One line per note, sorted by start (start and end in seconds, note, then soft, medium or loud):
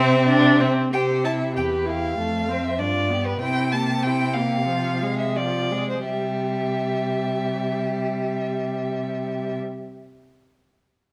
0.00 0.70 C3 medium
0.00 0.22 C4 medium
0.00 0.58 C4 medium
0.00 0.70 E5 medium
0.28 0.62 D4 medium
0.60 0.93 C4 medium
0.93 1.58 C3 soft
0.93 1.25 G4 soft
0.93 1.25 C5 soft
0.93 1.01 G5 medium
1.24 1.54 E4 soft
1.24 1.55 E5 soft
1.24 1.33 A5 medium
1.55 2.18 E2 soft
1.55 1.87 G4 soft
1.55 1.91 B4 soft
1.55 1.64 G5 medium
1.85 2.16 E4 soft
1.85 2.65 F5 medium
1.90 2.19 G4 soft
2.17 2.81 F2 soft
2.17 2.49 A3 soft
2.17 2.52 A4 soft
2.48 2.79 C4 soft
2.48 2.80 C5 soft
2.64 2.80 E5 soft
2.78 3.40 G2 soft
2.78 3.10 D4 soft
2.78 3.13 F4 soft
2.78 3.27 D5 medium
3.09 3.40 B3 soft
3.09 3.41 G4 soft
3.26 3.40 B4 medium
3.40 5.79 C3 soft
3.40 3.73 C4 soft
3.40 3.76 E4 soft
3.40 3.73 G5 medium
3.72 4.04 A#3 soft
3.72 4.08 G4 soft
3.72 4.04 A5 medium
4.03 4.37 C4 soft
4.03 4.38 E4 soft
4.03 4.36 G5 medium
4.34 4.67 A#3 soft
4.34 4.69 G4 soft
4.34 5.18 F5 medium
4.67 5.04 F3 soft
4.71 5.05 F4 soft
5.02 5.38 G#3 soft
5.02 5.38 G#4 soft
5.19 5.38 E5 medium
5.36 5.73 F3 soft
5.36 5.73 F4 soft
5.36 5.88 D5 medium
5.71 6.06 G#3 soft
5.71 6.05 G#4 soft
5.90 6.05 C5 soft
6.06 9.58 C3 soft
6.06 9.58 G3 soft
6.06 9.57 G4 soft
6.06 9.58 E5 soft